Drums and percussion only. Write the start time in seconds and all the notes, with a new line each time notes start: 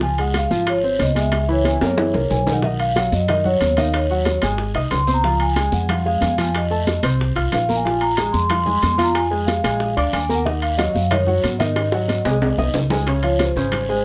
0.01 high bongo, high conga, long guiro
0.18 high conga, high timbale
0.34 high bongo, high conga, high timbale, short guiro
0.51 high bongo, high conga, short guiro
0.67 high bongo, high conga, high timbale, long guiro
0.83 high bongo, high conga
0.99 high bongo, low bongo, high conga, high timbale, short guiro
1.16 high bongo, high conga, high timbale, short guiro
1.32 high bongo, high conga, high timbale, long guiro
1.65 high bongo, high conga, high timbale, short guiro
1.81 high bongo, high conga, high timbale, short guiro
1.98 high bongo, low conga, high timbale, long guiro
2.14 low bongo, low conga, low timbale
2.31 low conga, low timbale, short guiro
2.47 low bongo, low conga, low timbale, short guiro
2.62 high bongo, high conga, long guiro
2.79 high conga, high timbale
2.96 high bongo, high conga, high timbale, short guiro
3.12 high bongo, high conga, short guiro
3.28 high bongo, high conga, low conga, high timbale, long guiro
3.45 high bongo, high conga, low conga
3.61 high bongo, low bongo, high conga, high timbale, short guiro
3.77 high bongo, high conga, high timbale, short guiro
3.93 high bongo, high conga, high timbale, long guiro
4.10 high conga
4.25 high bongo, high conga, high timbale, short guiro
4.42 high bongo, high conga, high timbale, short guiro
4.58 high bongo, high conga, long guiro
4.75 high bongo, high conga, high timbale
4.91 high bongo, low bongo, high conga, high timbale, low timbale, short guiro
5.07 high bongo, high conga, short guiro
5.24 high bongo, high conga, long guiro
5.40 high conga, high timbale
5.56 high bongo, high conga, high timbale, short guiro
5.72 high bongo, high conga, short guiro
5.89 high bongo, high conga, low conga, high timbale, long guiro
6.05 high bongo, high conga
6.21 high bongo, low bongo, high conga, high timbale, short guiro
6.38 high bongo, high conga, high timbale, short guiro
6.55 high bongo, high conga, high timbale, long guiro
6.71 high conga
6.87 high bongo, high conga, high timbale, short guiro
7.03 high bongo, high conga, high timbale, short guiro
7.20 high bongo, high conga, long guiro
7.36 high bongo, high conga, high timbale
7.52 high bongo, low bongo, high conga, high timbale, low timbale, short guiro
7.69 high bongo, high conga, short guiro
7.86 high bongo, high conga, long guiro
8.01 high conga, high timbale
8.17 high bongo, high conga, high timbale, short guiro
8.34 high bongo, high conga, short guiro
8.50 high bongo, high conga, low conga, high timbale, long guiro
8.67 high bongo, high conga, low conga
8.83 high bongo, low bongo, high conga, high timbale, short guiro
8.99 high bongo, high conga, high timbale, short guiro
9.15 high bongo, high conga, high timbale, long guiro
9.32 high conga
9.48 high bongo, high conga, high timbale, short guiro
9.64 high bongo, high conga, high timbale, short guiro
9.80 high bongo, high conga, long guiro
9.97 high bongo, high conga, high timbale
10.13 high bongo, low bongo, high conga, high timbale, short guiro
10.30 high bongo, high conga, short guiro
10.46 high bongo, high conga, long guiro
10.62 high conga, high timbale
10.79 high bongo, high conga, high timbale, short guiro
10.96 high bongo, high conga, short guiro
11.11 high bongo, high conga, low conga, high timbale, long guiro
11.28 high bongo, high conga, low conga
11.44 high bongo, low bongo, high conga, high timbale, short guiro
11.60 high bongo, high conga, high timbale, short guiro
11.76 high bongo, high timbale, long guiro
11.92 high bongo, high conga
12.08 low bongo, high conga, high timbale, short guiro
12.25 high conga, high timbale, short guiro
12.42 low bongo, high conga, high timbale, long guiro
12.58 low bongo, high conga, low timbale
12.74 low bongo, low conga, low timbale, short guiro
12.90 low bongo, low conga, low timbale, short guiro
13.07 high bongo, high conga, high timbale, long guiro
13.23 high conga, high timbale
13.39 high bongo, high conga, high timbale, low timbale, short guiro
13.57 short guiro
13.72 high bongo, high conga, low conga, high timbale, long guiro
13.89 high conga